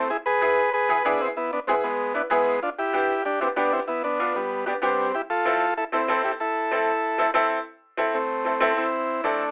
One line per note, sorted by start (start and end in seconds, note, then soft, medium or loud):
0.00 0.11 C4 loud
0.10 0.18 E4 medium
0.10 0.17 G#4 loud
0.26 0.70 G#4 medium
0.26 0.72 B4 loud
0.41 0.58 B3 medium
0.41 0.58 E4 medium
0.41 0.58 G#4 medium
0.73 1.03 G#4 medium
0.73 1.06 B4 loud
0.89 0.94 B3 medium
0.89 0.94 E4 medium
0.89 0.95 G#4 medium
1.05 1.27 B3 medium
1.05 1.20 B3 medium
1.05 1.21 D4 medium
1.05 1.27 E4 medium
1.05 1.27 G#4 medium
1.20 1.28 C4 medium
1.20 1.27 E4 medium
1.37 1.51 B3 medium
1.37 1.51 E4 medium
1.53 1.60 B3 medium
1.53 1.60 D4 medium
1.67 1.75 G#3 medium
1.67 1.84 B3 medium
1.67 1.74 C4 loud
1.67 1.84 E4 medium
1.67 1.85 G#4 medium
1.84 2.13 G#3 medium
1.84 2.15 B3 loud
2.14 2.20 B3 medium
2.14 2.23 B3 medium
2.14 2.22 D4 medium
2.14 2.20 E4 medium
2.14 2.20 B4 medium
2.30 2.60 G#3 medium
2.30 2.52 B3 medium
2.30 2.60 B3 medium
2.30 2.53 E4 medium
2.30 2.53 G#4 medium
2.63 2.70 D4 medium
2.63 2.70 F4 medium
2.78 3.22 E4 medium
2.78 3.24 G4 loud
2.93 3.10 B3 medium
2.93 3.10 D4 medium
2.93 3.10 G4 medium
3.25 3.40 D4 medium
3.25 3.40 G4 loud
3.41 3.46 B3 medium
3.41 3.48 C4 medium
3.41 3.47 D4 medium
3.41 3.48 E4 medium
3.41 3.47 G4 medium
3.56 3.78 B3 medium
3.56 3.72 B3 medium
3.56 3.73 D4 medium
3.56 3.79 D4 medium
3.56 3.79 G4 medium
3.73 3.80 C4 medium
3.73 3.80 E4 loud
3.88 4.03 B3 medium
3.88 4.02 E4 medium
4.04 4.33 B3 medium
4.04 4.36 D4 loud
4.19 4.36 B3 medium
4.19 4.36 D4 medium
4.19 4.36 F4 medium
4.36 4.65 G3 medium
4.36 4.65 B3 medium
4.66 4.72 B3 medium
4.66 4.74 B3 medium
4.66 4.72 D4 medium
4.66 4.74 D4 medium
4.66 4.72 G4 medium
4.82 5.12 G3 medium
4.82 5.04 B3 medium
4.82 5.15 C4 medium
4.82 5.04 D4 medium
4.82 5.05 G4 medium
5.14 5.22 E4 medium
5.14 5.21 G4 loud
5.30 5.74 F4 medium
5.30 5.74 A4 loud
5.45 5.62 C4 medium
5.45 5.62 E4 medium
5.45 5.62 A4 medium
5.77 5.85 E4 medium
5.77 5.84 A4 loud
5.92 5.98 C4 medium
5.92 6.23 C4 medium
5.92 5.98 E4 medium
5.92 6.22 E4 medium
5.92 5.98 A4 medium
6.08 6.31 C4 medium
6.08 6.31 E4 medium
6.08 6.31 A4 medium
6.25 6.32 E4 medium
6.25 6.32 G4 medium
6.40 7.31 E4 medium
6.40 7.31 A4 medium
6.72 6.88 C4 medium
6.72 6.88 E4 medium
6.72 6.89 A4 medium
7.18 7.24 C4 medium
7.18 7.24 E4 medium
7.18 7.25 A4 medium
7.34 7.56 C4 medium
7.34 7.57 E4 medium
7.34 7.57 A4 loud
7.97 8.14 C4 medium
7.97 8.14 E4 medium
7.97 8.15 A4 medium
8.14 8.73 A3 medium
8.14 8.73 C4 medium
8.45 8.50 C4 medium
8.45 8.51 E4 medium
8.45 8.51 A4 medium
8.61 8.83 C4 loud
8.61 8.83 E4 medium
8.61 8.83 A4 loud
8.77 9.21 C4 medium
8.77 9.26 E4 loud
9.24 9.51 A3 medium
9.24 9.41 C4 medium
9.24 9.51 D4 medium
9.24 9.41 E4 medium
9.24 9.41 A4 medium